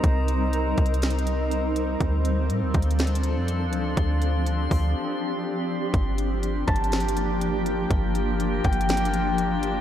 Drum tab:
HH |x--x--x--xxxxxxx--x--x--|x--x--x--xxxxxxx--x--x--|x--x--x--o--------------|x--x--x--xxxxxxx--x--x--|
SD |------------o-----------|------------o-----------|------------------------|---------r--o-----------|
BD |o--------o--------------|o--------o--------------|o--------o--------------|o--------o--------------|

HH |x--x--x--xxxxxxx--x--x--|
SD |------------o-----------|
BD |o--------o--------------|